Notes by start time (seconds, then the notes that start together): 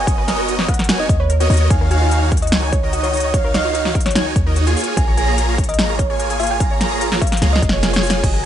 Already playing: F#1 G#5
0.07 B3 F#4 A#4 C#5 D#5, kick, closed hi-hat
0.18 B4
0.28 B3 F#4 A#4 C#5 D#5, snare, closed hi-hat
0.38 F#4
0.48 D#4, closed hi-hat
0.59 B3 F#4 A#4 C#5 D#5, snare
0.68 B4 F#5, kick, closed hi-hat
0.74 closed hi-hat
0.79 A#4, snare, closed hi-hat
0.84 closed hi-hat
0.89 B3 F#4 A#4 C#5 G#5, snare, closed hi-hat
1.00 D#4 D#5
1.09 D#2 C#5 D#5, kick, closed hi-hat
1.20 B4 C#5
1.30 A#4, closed hi-hat
1.40 B3 F#4 A#4 C#5 D#5, closed hi-hat
1.50 D#2 D#4, closed hi-hat, open hi-hat
1.57 C#5, closed hi-hat
1.70 D#2 D#3 D#4 F#4 C#5 F5 G#5, kick, closed hi-hat
1.81 A#4 G#5
1.91 D#3 D#4 F#4 C#5 F5 G#5, closed hi-hat
2.02 F4
2.11 D#4, closed hi-hat
2.22 D#3 D#4 F#4 C#5 F5
2.32 A#4, kick, closed hi-hat
2.37 closed hi-hat
2.42 F#4 D#5, closed hi-hat
2.47 closed hi-hat
2.52 C#2 D#3 D#4 F4 F#4 C#5 G#5, snare, closed hi-hat
2.63 D#4
2.72 C#5, kick, closed hi-hat
2.83 D#3 D#4 F#4 A#4 C#5 D#5
2.93 F#4, closed hi-hat
3.03 D#3 D#4 F4 F#4 C#5 D#5, closed hi-hat
3.13 D#4, closed hi-hat, open hi-hat
3.20 C#5, closed hi-hat
3.34 D#3 C#5 F5, kick, closed hi-hat
3.44 A#4 C#5
3.54 D#3 D#4 F#4 C#5 D#5 F5, snare, closed hi-hat
3.65 F4
3.75 D#4, closed hi-hat
3.85 D#3 D#4 F#4 C#5 F5, snare
3.95 A#4, kick, closed hi-hat
4.00 closed hi-hat
4.06 F#4 C#5, snare, closed hi-hat
4.11 closed hi-hat
4.15 D#3 D#4 F4 F#4 C#5 G#5, snare, closed hi-hat
4.26 D#4
4.36 D#2 C#5, kick, closed hi-hat
4.46 D#3 D#4 F#4 A#4 C#5 D#5
4.56 F#4, closed hi-hat
4.67 A#3 F4 G#4 C#5 G#5, closed hi-hat
4.77 F4, closed hi-hat, open hi-hat
4.84 F5, closed hi-hat
4.97 A#1 A#3 F4 C#5 F5 G#5 A#5, kick, closed hi-hat
5.08 C#5 G#5
5.17 A#3 F4 G#4 A#4 C#5 G#5 A#5, closed hi-hat
5.28 G#4
5.38 F4, closed hi-hat
5.48 A#3 F4 G#4 C#5 F5 A#5
5.58 C#5, kick, closed hi-hat
5.64 closed hi-hat
5.69 A#4 D#5, closed hi-hat
5.74 closed hi-hat
5.79 G#1 A#3 F4 G#4 C#5 A#5, snare, closed hi-hat
5.89 F4
5.99 C#5 F5, kick, closed hi-hat
6.10 A#3 F4 G#4 C#5 G#5
6.20 A#4, closed hi-hat
6.30 A#3 F4 G#4 C#5 G#5, closed hi-hat
6.40 F4 F5, closed hi-hat, open hi-hat
6.47 closed hi-hat
6.51 F5 G#5
6.60 A#3 F4 C#5 F5 A#5, kick, closed hi-hat
6.71 C#5
6.81 A#3 F4 G#4 A#4 C#5 A#5, snare, closed hi-hat
6.91 G#4
7.01 F4, closed hi-hat
7.12 A#3 F4 G#4 C#5 F5 A#5, snare
7.21 C#5 F5, kick, closed hi-hat
7.27 closed hi-hat
7.32 A#4, snare, closed hi-hat
7.37 closed hi-hat
7.42 C#2 A#3 F4 G#4 C#5 A#5, snare, closed hi-hat
7.53 F4 D#5, snare
7.62 F1 D#5 F5, kick, closed hi-hat
7.69 A#3 F4 G#4 C#5 G#5, snare
7.83 A#4, snare, closed hi-hat
7.93 A#3 F4 G#4 C#5 G#5, snare, closed hi-hat
8.03 F4, closed hi-hat, open hi-hat
8.10 F5, snare, closed hi-hat
8.23 F#1 F#3 F#4 G#4 D#5 G#5, kick, closed hi-hat, crash
8.34 G#5